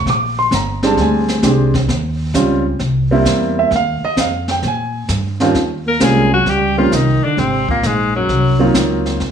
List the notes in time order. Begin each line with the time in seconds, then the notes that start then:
0.06 A#1 D6, brush sweep, kick, snare
0.39 C6
0.51 G1 A#5, kick, snare, hi-hat pedal
0.83 G3 G#3 C4 D4 A5, snare
0.97 D2, brush sweep, kick, snare
1.01 G#5
1.28 snare
1.43 C2 G#3 C4 D4 G4, kick, snare, hi-hat pedal
1.74 kick, snare
1.88 D#2, brush sweep, kick, snare
2.34 C#2 G3 C4 C#4 F4, kick, snare, hi-hat pedal
2.79 C2, brush sweep, kick, snare
3.11 G3 A#3 C4 E4
3.25 E2, kick, snare, hi-hat pedal
3.59 E5
3.71 D#2, brush sweep, kick, snare
3.76 F5
4.02 D#5, muted upright bass stroke
4.17 F2, kick, snare, hi-hat pedal
4.21 F5
4.48 G5, snare
4.62 A#2, brush sweep, kick, snare
4.67 G#5
5.09 G2, kick, snare, hi-hat pedal
5.40 D#2 G3 C4 C#4 F4, snare
5.54 D#2, brush sweep, kick, snare
5.87 A#3 A#4
6.00 C2 G3 G#3 A#3 C4 C#4 F4 G#4, kick, snare, hi-hat pedal
6.33 F#3 F#4
6.46 C#2 G3 G4, brush sweep, kick, snare
6.77 F3 G3 A#3 C4 C#4 F4
6.91 C2 D#3 D#4, kick, snare, hi-hat pedal
7.24 D3 D4
7.37 G#1 C3 C4, brush sweep, kick, snare
7.68 A#2 A#3, kick
7.83 A#1 G#2 G#3, kick, snare, hi-hat pedal
8.15 F#2 F#3
8.29 C2, brush sweep, kick, snare
8.59 F#3 A#3 C4 D#4 F4
8.74 C#2, kick, snare, hi-hat pedal
9.06 snare
9.20 D#2, brush sweep, kick, snare